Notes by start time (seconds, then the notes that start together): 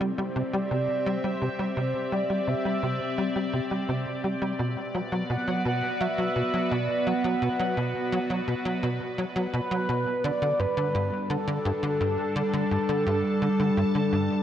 Already playing: C4 E4 G4 C5 D5 E5
0.01 G3
0.18 G3
0.36 C3 D5
0.53 G3
0.71 C3
1.06 G3 C5
1.24 G3
1.42 C3
1.59 G3
1.77 C3 C5
2.12 G3 D5
2.30 G3
2.47 C3 E5
2.65 G3
2.83 C3
3.18 G3
3.36 G3
3.53 C3
3.71 G3
3.89 C3
4.24 G3
4.42 G3
4.59 B2 B3
4.70 B4
4.76 F#4
4.95 F#3
5.12 F#3
5.30 B2 F#5
5.48 F#3
5.65 B2 F#5
6.01 F#3 E5
6.18 F#3
6.36 B2
6.54 F#3
6.71 B2 D5
7.07 F#3 F#5
7.24 F#3
7.42 B2
7.59 F#3
7.77 B2
8.12 F#3
8.30 F#3
8.48 B2
8.65 F#3
8.83 B2
9.18 F#3
9.36 F#3
9.54 B2 B4
9.71 F#3
9.89 B2
10.24 D3 G3 D5
10.30 D4
10.42 D3
10.59 G2 B4
10.67 A4
10.77 D3
10.95 G2
11.05 A5
11.30 D3 A4
11.48 D3
11.65 G2
11.83 D3
12.01 G2
12.36 D3
12.54 D3
12.71 G2
12.89 D3
13.07 G2
13.42 D3
13.60 D3
13.77 G2
13.95 D3
14.12 G2